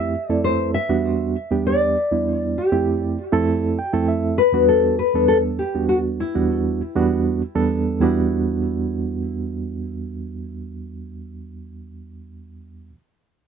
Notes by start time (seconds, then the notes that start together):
Already playing: F2 A3 C4 E4 G4 E5
0.30 F2 A3 C4 E4 A4 D5
0.44 C5
0.74 E5
0.89 E2 G3 B3 D4 F#4
1.51 E2 G3 B3 D4 G4
1.67 D5
2.11 E2 G3 B3 D4 E4
2.58 G4
2.72 F2 A3 C4 E4 G4
3.32 F2 A3 C4 E4 A4
3.79 G5
3.93 F2 A3 C4 E4 A4
4.08 E5
4.38 B4
4.53 E2 G3 B3 D4 F#4
4.68 A4
4.99 B4
5.15 E2 G3 B3 D4 A4
5.28 A4
5.59 G4
5.75 E2 G3 B3 D4 F#4
5.89 F#4
6.20 E4
6.35 E2 G3 B3 D4 F#4
6.95 E2 G3 B3 D4 F#4
7.55 E2 G3 B3 D4 A4
8.00 E2 G3 B3 D4 E4
8.04 F#4